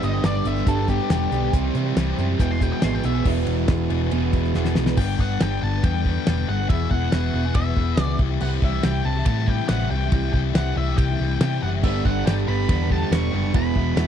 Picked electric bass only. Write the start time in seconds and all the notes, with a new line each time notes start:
0.03 G1
0.24 G1
0.45 G1
0.67 G1
1.10 E1
1.32 B1
1.53 C2
1.75 C3
1.96 C2
2.19 F#2
2.39 E1
2.83 G#1
3.04 B1
3.26 E1
3.47 E1
3.68 E1
3.90 E1
4.12 E1
4.33 E1
4.55 E1
4.76 B1
4.97 G1
5.19 G1
5.41 G1
5.63 G1
5.84 E2
6.27 E1
6.49 G1
6.70 E1
6.91 E1
7.13 E1
7.34 E1
7.55 E1
7.77 E1
7.97 C#2
8.19 C2
8.41 C2
8.62 C2
8.84 C2
9.05 C2
9.26 A2
9.69 A1
9.91 C2
10.12 C2
10.34 C2
10.55 C2
10.76 C2
10.98 C2
11.20 C2
11.41 C3
11.62 F#1
11.83 G1
12.05 G1
12.27 G1
12.48 G1
12.69 E2
13.11 E1
13.33 F#1
13.54 E1
13.76 E1
13.96 E1